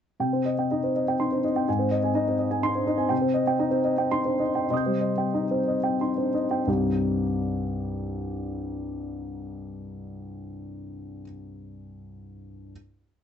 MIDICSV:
0, 0, Header, 1, 2, 480
1, 0, Start_track
1, 0, Key_signature, -3, "minor"
1, 0, Tempo, 485044
1, 208, Time_signature, 3, 2, 24, 8
1, 3563, Tempo, 524934
1, 4043, Tempo, 607287
1, 5003, Tempo, 652884
1, 7883, Tempo, 633580
1, 10900, End_track
2, 0, Start_track
2, 0, Title_t, "Grand piano"
2, 0, Program_c, 0, 0
2, 195, Note_on_c, 0, 48, 43
2, 200, Note_on_c, 0, 79, 39
2, 325, Note_on_c, 0, 72, 35
2, 330, Note_on_c, 0, 60, 36
2, 399, Control_c, 0, 64, 127
2, 401, Note_off_c, 0, 79, 0
2, 451, Note_on_c, 0, 75, 40
2, 525, Note_off_c, 0, 72, 0
2, 527, Note_off_c, 0, 60, 0
2, 580, Note_on_c, 0, 79, 39
2, 581, Note_on_c, 0, 60, 37
2, 648, Note_off_c, 0, 75, 0
2, 705, Note_on_c, 0, 75, 47
2, 707, Note_on_c, 0, 63, 41
2, 772, Note_off_c, 0, 60, 0
2, 772, Note_off_c, 0, 79, 0
2, 825, Note_on_c, 0, 72, 41
2, 827, Note_on_c, 0, 60, 39
2, 893, Note_off_c, 0, 75, 0
2, 894, Note_off_c, 0, 63, 0
2, 951, Note_on_c, 0, 75, 41
2, 1012, Note_off_c, 0, 72, 0
2, 1013, Note_off_c, 0, 60, 0
2, 1070, Note_on_c, 0, 79, 42
2, 1071, Note_on_c, 0, 60, 37
2, 1135, Note_off_c, 0, 75, 0
2, 1184, Note_on_c, 0, 84, 58
2, 1190, Note_on_c, 0, 63, 42
2, 1256, Note_off_c, 0, 60, 0
2, 1256, Note_off_c, 0, 79, 0
2, 1306, Note_on_c, 0, 72, 38
2, 1308, Note_on_c, 0, 62, 33
2, 1374, Note_off_c, 0, 84, 0
2, 1376, Note_off_c, 0, 63, 0
2, 1423, Note_off_c, 0, 62, 0
2, 1426, Note_on_c, 0, 63, 40
2, 1429, Note_on_c, 0, 75, 42
2, 1494, Note_off_c, 0, 72, 0
2, 1545, Note_on_c, 0, 60, 40
2, 1545, Note_on_c, 0, 79, 46
2, 1610, Note_off_c, 0, 48, 0
2, 1613, Note_off_c, 0, 63, 0
2, 1614, Note_off_c, 0, 75, 0
2, 1659, Note_off_c, 0, 60, 0
2, 1659, Note_off_c, 0, 79, 0
2, 1666, Note_on_c, 0, 80, 46
2, 1669, Note_on_c, 0, 44, 53
2, 1672, Control_c, 0, 64, 0
2, 1769, Note_on_c, 0, 60, 44
2, 1773, Note_on_c, 0, 72, 47
2, 1849, Note_off_c, 0, 80, 0
2, 1852, Control_c, 0, 64, 127
2, 1893, Note_on_c, 0, 75, 54
2, 1960, Note_off_c, 0, 60, 0
2, 1962, Note_off_c, 0, 72, 0
2, 2008, Note_on_c, 0, 60, 45
2, 2013, Note_on_c, 0, 80, 45
2, 2081, Note_off_c, 0, 75, 0
2, 2122, Note_on_c, 0, 63, 55
2, 2127, Note_on_c, 0, 75, 58
2, 2199, Note_off_c, 0, 60, 0
2, 2202, Note_off_c, 0, 80, 0
2, 2252, Note_on_c, 0, 60, 48
2, 2254, Note_on_c, 0, 72, 51
2, 2317, Note_off_c, 0, 63, 0
2, 2320, Note_off_c, 0, 75, 0
2, 2366, Note_on_c, 0, 75, 53
2, 2443, Note_off_c, 0, 60, 0
2, 2444, Note_off_c, 0, 72, 0
2, 2482, Note_on_c, 0, 80, 52
2, 2488, Note_on_c, 0, 60, 48
2, 2560, Note_off_c, 0, 75, 0
2, 2602, Note_on_c, 0, 63, 53
2, 2605, Note_on_c, 0, 84, 81
2, 2678, Note_off_c, 0, 80, 0
2, 2681, Note_off_c, 0, 60, 0
2, 2723, Note_on_c, 0, 72, 45
2, 2726, Note_on_c, 0, 62, 41
2, 2797, Note_off_c, 0, 63, 0
2, 2798, Note_off_c, 0, 84, 0
2, 2839, Note_on_c, 0, 63, 54
2, 2841, Note_on_c, 0, 75, 56
2, 2846, Note_off_c, 0, 62, 0
2, 2915, Note_off_c, 0, 72, 0
2, 2944, Note_on_c, 0, 60, 52
2, 2946, Note_on_c, 0, 80, 52
2, 3032, Note_off_c, 0, 63, 0
2, 3033, Note_off_c, 0, 75, 0
2, 3050, Note_off_c, 0, 44, 0
2, 3057, Note_on_c, 0, 79, 61
2, 3060, Note_on_c, 0, 48, 66
2, 3072, Note_off_c, 0, 60, 0
2, 3073, Note_off_c, 0, 80, 0
2, 3102, Control_c, 0, 64, 0
2, 3181, Note_on_c, 0, 72, 51
2, 3183, Note_on_c, 0, 60, 52
2, 3229, Control_c, 0, 64, 127
2, 3260, Note_off_c, 0, 79, 0
2, 3304, Note_on_c, 0, 75, 60
2, 3382, Note_off_c, 0, 72, 0
2, 3384, Note_off_c, 0, 60, 0
2, 3432, Note_on_c, 0, 60, 46
2, 3436, Note_on_c, 0, 79, 56
2, 3506, Note_off_c, 0, 75, 0
2, 3555, Note_on_c, 0, 63, 56
2, 3559, Note_on_c, 0, 75, 64
2, 3628, Note_off_c, 0, 60, 0
2, 3630, Note_off_c, 0, 79, 0
2, 3662, Note_on_c, 0, 60, 47
2, 3662, Note_on_c, 0, 72, 53
2, 3746, Note_off_c, 0, 63, 0
2, 3747, Note_off_c, 0, 75, 0
2, 3784, Note_on_c, 0, 75, 53
2, 3861, Note_off_c, 0, 60, 0
2, 3861, Note_off_c, 0, 72, 0
2, 3911, Note_on_c, 0, 79, 51
2, 3913, Note_on_c, 0, 60, 45
2, 3986, Note_off_c, 0, 75, 0
2, 4032, Note_on_c, 0, 63, 47
2, 4033, Note_on_c, 0, 84, 75
2, 4106, Note_off_c, 0, 79, 0
2, 4107, Note_off_c, 0, 60, 0
2, 4144, Note_on_c, 0, 62, 39
2, 4144, Note_on_c, 0, 72, 43
2, 4217, Note_off_c, 0, 63, 0
2, 4217, Note_off_c, 0, 84, 0
2, 4256, Note_on_c, 0, 75, 45
2, 4257, Note_on_c, 0, 63, 45
2, 4263, Note_off_c, 0, 62, 0
2, 4332, Note_off_c, 0, 72, 0
2, 4381, Note_on_c, 0, 79, 43
2, 4382, Note_on_c, 0, 60, 43
2, 4451, Note_off_c, 0, 75, 0
2, 4452, Note_off_c, 0, 63, 0
2, 4465, Note_off_c, 0, 48, 0
2, 4499, Note_on_c, 0, 84, 33
2, 4502, Note_on_c, 0, 48, 52
2, 4503, Note_on_c, 0, 75, 45
2, 4525, Note_on_c, 0, 87, 33
2, 4526, Control_c, 0, 64, 0
2, 4549, Note_on_c, 0, 91, 31
2, 4578, Note_off_c, 0, 79, 0
2, 4579, Note_off_c, 0, 60, 0
2, 4624, Note_on_c, 0, 72, 40
2, 4626, Note_on_c, 0, 55, 41
2, 4668, Control_c, 0, 64, 127
2, 4703, Note_off_c, 0, 75, 0
2, 4743, Note_on_c, 0, 75, 47
2, 4826, Note_off_c, 0, 55, 0
2, 4826, Note_off_c, 0, 72, 0
2, 4873, Note_on_c, 0, 60, 39
2, 4875, Note_on_c, 0, 79, 42
2, 4948, Note_off_c, 0, 75, 0
2, 5003, Note_on_c, 0, 63, 46
2, 5005, Note_on_c, 0, 75, 49
2, 5072, Note_off_c, 0, 60, 0
2, 5073, Note_off_c, 0, 79, 0
2, 5128, Note_on_c, 0, 60, 42
2, 5129, Note_on_c, 0, 72, 45
2, 5193, Note_off_c, 0, 63, 0
2, 5194, Note_off_c, 0, 75, 0
2, 5251, Note_on_c, 0, 75, 42
2, 5318, Note_off_c, 0, 60, 0
2, 5318, Note_off_c, 0, 72, 0
2, 5366, Note_on_c, 0, 79, 43
2, 5370, Note_on_c, 0, 60, 38
2, 5442, Note_off_c, 0, 75, 0
2, 5486, Note_off_c, 0, 84, 0
2, 5497, Note_on_c, 0, 63, 41
2, 5497, Note_on_c, 0, 84, 45
2, 5562, Note_off_c, 0, 79, 0
2, 5564, Note_off_c, 0, 60, 0
2, 5618, Note_on_c, 0, 62, 36
2, 5618, Note_on_c, 0, 72, 40
2, 5691, Note_off_c, 0, 63, 0
2, 5691, Note_off_c, 0, 84, 0
2, 5738, Note_on_c, 0, 63, 40
2, 5740, Note_off_c, 0, 62, 0
2, 5740, Note_on_c, 0, 75, 41
2, 5816, Note_off_c, 0, 72, 0
2, 5862, Note_on_c, 0, 79, 43
2, 5865, Note_on_c, 0, 60, 37
2, 5934, Note_off_c, 0, 63, 0
2, 5935, Note_off_c, 0, 75, 0
2, 5949, Note_off_c, 0, 48, 0
2, 5960, Note_off_c, 0, 87, 0
2, 5971, Note_off_c, 0, 91, 0
2, 5977, Note_off_c, 0, 60, 0
2, 5980, Note_on_c, 0, 36, 51
2, 5980, Note_on_c, 0, 43, 44
2, 5981, Note_off_c, 0, 79, 0
2, 5986, Note_on_c, 0, 55, 44
2, 5988, Note_on_c, 0, 60, 45
2, 5989, Note_on_c, 0, 63, 41
2, 5993, Note_on_c, 0, 67, 45
2, 5999, Control_c, 0, 64, 0
2, 6140, Control_c, 0, 64, 127
2, 9366, Note_off_c, 0, 36, 0
2, 9367, Note_off_c, 0, 43, 0
2, 9373, Note_off_c, 0, 55, 0
2, 9375, Note_off_c, 0, 60, 0
2, 9376, Note_off_c, 0, 63, 0
2, 9380, Note_off_c, 0, 67, 0
2, 10508, Control_c, 0, 64, 0
2, 10900, End_track
0, 0, End_of_file